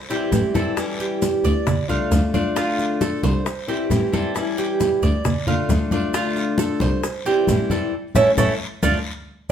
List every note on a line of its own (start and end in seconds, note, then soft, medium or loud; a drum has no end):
0.10 0.31 E3 medium
0.10 0.31 G3 medium
0.10 0.32 C4 medium
0.10 0.32 E4 medium
0.10 0.54 G4 medium
0.10 high bongo soft
0.10 high conga soft
0.10 maracas soft
0.32 0.40 A1 medium
0.32 0.54 E3 soft
0.32 0.54 G3 soft
0.32 0.54 C4 soft
0.32 0.53 E4 medium
0.32 high bongo soft
0.32 low bongo medium
0.32 high conga medium
0.32 short guiro medium
0.32 maracas medium
0.54 0.75 E3 medium
0.54 0.76 G3 medium
0.54 0.76 C4 medium
0.54 0.76 E4 medium
0.54 0.99 A4 medium
0.54 high conga loud
0.54 short guiro medium
0.54 maracas soft
0.76 1.65 E3 medium
0.76 1.66 G3 medium
0.76 1.66 C#4 medium
0.76 1.67 E4 medium
0.76 high bongo medium
0.76 high conga soft
0.76 long guiro medium
0.76 maracas medium
1.00 1.43 G4 medium
1.00 high bongo soft
1.00 high conga soft
1.00 maracas soft
1.22 high bongo medium
1.22 high conga medium
1.22 short guiro medium
1.22 maracas medium
1.44 1.52 D2 medium
1.44 1.88 D5 medium
1.44 high bongo soft
1.44 high conga soft
1.44 short guiro medium
1.44 maracas soft
1.67 muted steel-string acoustic guitar stroke medium
1.67 high bongo medium
1.67 high conga soft
1.67 low conga medium
1.67 long guiro medium
1.67 maracas medium
1.89 1.97 C2 medium
1.89 2.11 A3 medium
1.89 2.11 D4 medium
1.89 2.10 F4 medium
1.89 2.33 F5 medium
1.89 high bongo soft
1.89 high conga soft
1.89 maracas soft
2.11 2.19 D2 medium
2.11 2.33 D3 soft
2.11 2.33 A3 soft
2.11 2.34 D4 medium
2.11 2.33 F4 medium
2.11 high bongo soft
2.11 low bongo medium
2.11 high conga medium
2.11 short guiro medium
2.11 maracas medium
2.34 2.56 A3 medium
2.34 2.56 D4 medium
2.34 2.55 F4 medium
2.34 2.56 D5 medium
2.34 high conga medium
2.34 short guiro medium
2.34 maracas soft
2.56 3.45 D3 medium
2.56 3.45 A3 medium
2.56 3.46 D4 medium
2.56 3.00 F4 medium
2.56 3.46 F4 medium
2.56 high bongo medium
2.56 high conga soft
2.56 long guiro medium
2.56 maracas medium
2.79 high bongo soft
2.79 high conga soft
2.79 maracas soft
3.01 3.23 A4 medium
3.01 high bongo medium
3.01 high conga medium
3.01 short guiro medium
3.01 maracas medium
3.23 3.31 C2 loud
3.23 3.67 C5 medium
3.23 high bongo soft
3.23 high conga medium
3.23 short guiro medium
3.23 maracas soft
3.46 muted steel-string acoustic guitar stroke medium
3.46 high bongo medium
3.46 high conga soft
3.46 long guiro medium
3.46 maracas medium
3.68 3.89 E3 medium
3.68 3.89 G3 medium
3.68 3.90 C4 medium
3.68 3.89 E4 medium
3.68 4.12 G4 medium
3.68 high bongo soft
3.68 high conga soft
3.68 maracas soft
3.90 3.99 A1 medium
3.90 4.12 E3 soft
3.90 4.12 G3 medium
3.90 4.12 C4 soft
3.90 4.11 E4 medium
3.90 high bongo soft
3.90 low bongo medium
3.90 high conga medium
3.90 short guiro medium
3.90 maracas medium
4.12 4.33 E3 medium
4.12 4.34 G3 medium
4.12 4.34 C4 medium
4.12 4.34 E4 medium
4.12 4.57 A4 medium
4.12 high conga medium
4.12 short guiro medium
4.12 maracas soft
4.34 5.24 E3 medium
4.34 5.24 G3 medium
4.34 5.24 C#4 medium
4.34 5.25 E4 medium
4.34 high bongo medium
4.34 high conga soft
4.34 long guiro medium
4.34 maracas medium
4.58 5.01 G4 medium
4.58 high bongo soft
4.58 high conga soft
4.58 maracas soft
4.80 high bongo medium
4.80 high conga medium
4.80 short guiro medium
4.80 maracas medium
5.02 5.10 D2 loud
5.02 5.46 D5 medium
5.02 high bongo soft
5.02 high conga soft
5.02 short guiro medium
5.02 maracas soft
5.25 muted steel-string acoustic guitar stroke medium
5.25 high bongo medium
5.25 high conga soft
5.25 low conga medium
5.25 long guiro medium
5.25 maracas medium
5.47 5.69 A3 medium
5.47 5.69 D4 medium
5.47 5.69 F4 medium
5.47 5.91 F5 medium
5.47 high bongo soft
5.47 high conga soft
5.47 low conga medium
5.47 maracas soft
5.69 5.77 D2 medium
5.69 5.91 D3 soft
5.69 5.92 A3 medium
5.69 5.92 D4 medium
5.69 5.91 F4 soft
5.69 high bongo soft
5.69 low bongo medium
5.69 high conga medium
5.69 short guiro medium
5.69 maracas medium
5.91 6.14 A3 medium
5.91 6.14 D4 medium
5.91 6.14 F4 medium
5.91 6.14 D5 medium
5.91 high conga medium
5.91 short guiro medium
5.91 maracas soft
6.14 7.03 D3 medium
6.14 7.03 A3 medium
6.14 7.04 D4 medium
6.14 6.58 F4 medium
6.14 7.04 F4 medium
6.14 high bongo medium
6.14 high conga soft
6.14 long guiro medium
6.14 maracas medium
6.36 high bongo soft
6.36 high conga soft
6.36 maracas soft
6.58 6.81 A4 medium
6.58 high bongo medium
6.58 high conga loud
6.58 short guiro medium
6.58 maracas medium
6.80 6.89 C2 loud
6.80 7.25 C5 medium
6.80 high bongo soft
6.80 high conga medium
6.80 short guiro medium
6.80 maracas soft
7.03 muted steel-string acoustic guitar stroke medium
7.03 high bongo medium
7.03 high conga soft
7.03 long guiro medium
7.03 maracas medium
7.25 7.47 E3 medium
7.25 7.48 G3 medium
7.25 7.48 C4 medium
7.25 7.48 E4 medium
7.25 7.70 G4 medium
7.25 high bongo soft
7.25 high conga soft
7.25 maracas soft
7.47 7.57 A1 medium
7.47 7.70 E3 soft
7.47 7.70 G3 soft
7.47 7.70 C4 medium
7.47 7.69 E4 medium
7.47 high bongo soft
7.47 low bongo medium
7.47 high conga medium
7.47 short guiro medium
7.47 maracas medium
7.70 7.93 E3 medium
7.70 7.93 G3 medium
7.70 7.93 C4 medium
7.70 7.92 E4 medium
7.70 7.93 A4 medium
7.70 high conga medium
7.70 short guiro medium
7.70 maracas soft
8.15 8.23 A1 loud
8.15 8.30 A3 loud
8.15 8.30 C#4 loud
8.15 8.30 E4 medium
8.15 8.30 A4 medium
8.15 8.30 C#5 medium
8.15 8.30 E5 medium
8.15 low bongo medium
8.15 high conga medium
8.15 long guiro loud
8.15 maracas medium
8.38 8.45 A1 loud
8.38 8.52 A3 medium
8.38 8.52 C#4 medium
8.38 8.52 E4 medium
8.38 8.52 A4 medium
8.38 8.53 C#5 medium
8.38 8.53 E5 medium
8.38 low bongo loud
8.38 high conga loud
8.38 long guiro medium
8.38 maracas loud
8.83 8.90 D2 medium
8.83 8.97 F3 loud
8.83 8.97 A3 medium
8.83 8.97 D4 medium
8.83 8.97 F4 loud
8.83 8.97 A4 medium
8.83 8.97 D5 medium
8.83 low bongo medium
8.83 high conga loud
8.83 long guiro loud
8.83 maracas medium